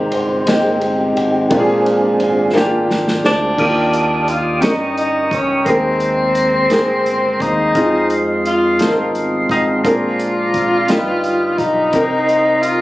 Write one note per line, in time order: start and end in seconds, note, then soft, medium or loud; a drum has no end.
0.00 0.44 C3 medium
0.00 0.11 G#3 medium
0.00 0.12 C4 medium
0.00 0.12 D#4 medium
0.00 0.44 D#4 medium
0.00 0.13 G4 medium
0.00 0.14 A#4 medium
0.12 1.13 G1 medium
0.12 0.48 C5 medium
0.12 ride soft
0.46 1.15 G#3 medium
0.46 0.79 G#3 soft
0.46 0.79 A#3 soft
0.46 1.15 C4 medium
0.46 0.80 C4 medium
0.46 1.16 D#4 medium
0.46 1.48 D#4 medium
0.46 1.55 G4 medium
0.46 1.16 G4 medium
0.46 snare loud
0.46 ride medium
0.81 ride soft
1.17 1.49 G#1 medium
1.17 ride soft
1.50 2.16 A#1 medium
1.50 2.51 A#2 medium
1.50 2.51 G#3 medium
1.50 2.18 A#3 medium
1.50 2.52 C4 medium
1.50 2.19 D4 medium
1.50 2.52 D4 medium
1.50 2.19 F4 medium
1.50 2.86 F4 medium
1.50 1.59 G4 medium
1.50 2.86 G#4 medium
1.50 kick loud
1.50 ride medium
1.60 2.23 G#4 medium
1.86 ride soft
2.20 3.21 G#1 loud
2.20 ride soft
2.54 3.22 A#3 medium
2.54 3.23 D4 medium
2.54 3.23 F4 medium
2.54 3.24 G4 medium
2.54 snare medium
2.91 snare medium
3.08 snare medium
3.24 3.56 D2 medium
3.24 3.55 G#3 soft
3.24 3.56 C4 soft
3.24 3.56 D4 medium
3.24 4.30 D4 loud
3.24 snare loud
3.57 4.59 D#2 medium
3.57 4.59 D#3 soft
3.57 4.27 A#3 medium
3.57 4.26 D4 medium
3.57 4.27 F4 medium
3.57 4.62 G4 medium
3.57 4.28 G4 medium
3.57 4.62 F5 soft
3.57 4.62 D6 soft
3.57 4.60 D#6 medium
3.57 kick medium
3.57 crash medium
3.93 closed hi-hat soft
4.28 4.65 F4 medium
4.28 closed hi-hat soft
4.61 5.28 G1 medium
4.61 5.63 G2 medium
4.61 5.30 C#4 medium
4.61 5.31 D#4 medium
4.61 4.98 D#4 medium
4.61 5.31 G4 medium
4.61 5.65 A#4 medium
4.61 5.32 A#4 medium
4.61 7.71 G5 soft
4.61 5.65 C#6 soft
4.61 5.65 D#6 medium
4.61 snare medium
4.61 closed hi-hat medium
4.97 5.30 D#4 medium
4.97 closed hi-hat soft
5.31 5.64 C#2 medium
5.31 5.65 C#4 medium
5.31 kick medium
5.31 closed hi-hat soft
5.65 6.67 D#2 medium
5.65 6.67 D#3 medium
5.65 10.84 G#3 medium
5.65 5.73 A#3 medium
5.65 7.44 C4 medium
5.65 6.35 G4 medium
5.65 6.35 G#4 medium
5.65 6.36 A#4 medium
5.65 7.72 A#5 medium
5.65 9.80 C6 medium
5.65 kick medium
5.65 closed hi-hat medium
5.71 6.37 C4 medium
6.00 closed hi-hat soft
6.35 closed hi-hat soft
6.70 7.37 G1 medium
6.70 6.77 A#3 medium
6.70 7.39 G4 medium
6.70 7.40 G#4 medium
6.70 7.40 A#4 medium
6.70 snare loud
6.70 closed hi-hat medium
6.76 7.42 C4 medium
7.06 closed hi-hat soft
7.40 7.72 D#2 medium
7.40 8.19 D#4 medium
7.40 kick medium
7.40 closed hi-hat medium
7.74 8.76 F2 medium
7.74 8.43 C4 medium
7.74 8.44 D#4 medium
7.74 8.45 F4 medium
7.74 8.45 G#4 medium
7.74 9.82 D#5 medium
7.74 9.82 F5 medium
7.74 kick medium
7.74 closed hi-hat medium
8.10 closed hi-hat soft
8.46 9.12 F4 medium
8.46 closed hi-hat soft
8.79 9.46 G#1 medium
8.79 9.48 C4 medium
8.79 9.48 D#4 medium
8.79 9.49 F4 medium
8.79 8.87 A4 medium
8.79 snare loud
8.79 closed hi-hat medium
8.89 9.53 A#4 medium
9.15 closed hi-hat soft
9.49 9.82 G#1 medium
9.49 9.66 D#4 medium
9.49 kick medium
9.49 closed hi-hat soft
9.83 10.85 A#1 medium
9.83 10.85 A#2 medium
9.83 10.52 C4 medium
9.83 10.53 D4 medium
9.83 11.60 F4 loud
9.83 10.53 G#4 medium
9.83 10.54 A#4 medium
9.83 10.88 D5 medium
9.83 10.88 A#5 medium
9.83 10.88 C6 medium
9.83 kick medium
9.83 closed hi-hat medium
10.19 closed hi-hat soft
10.54 kick medium
10.54 closed hi-hat soft
10.88 11.55 G1 medium
10.88 11.90 G2 medium
10.88 11.57 D#4 medium
10.88 11.58 F4 medium
10.88 12.81 G4 medium
10.88 11.58 G4 medium
10.88 10.97 A#4 medium
10.88 12.81 D#5 soft
10.88 11.93 F5 medium
10.88 11.93 B5 medium
10.88 snare loud
10.88 closed hi-hat medium
10.98 11.62 B4 medium
11.24 closed hi-hat soft
11.58 11.91 B1 medium
11.58 12.63 D#4 medium
11.58 kick medium
11.58 closed hi-hat soft
11.92 12.81 C2 medium
11.92 12.81 C3 medium
11.92 12.62 C4 medium
11.92 12.00 D4 soft
11.92 12.63 G4 medium
11.92 12.63 A#4 medium
11.92 12.81 A#5 soft
11.92 12.81 C6 medium
11.92 kick medium
11.92 closed hi-hat medium
12.01 12.66 D#4 medium
12.29 closed hi-hat soft
12.62 12.81 F4 medium
12.62 closed hi-hat soft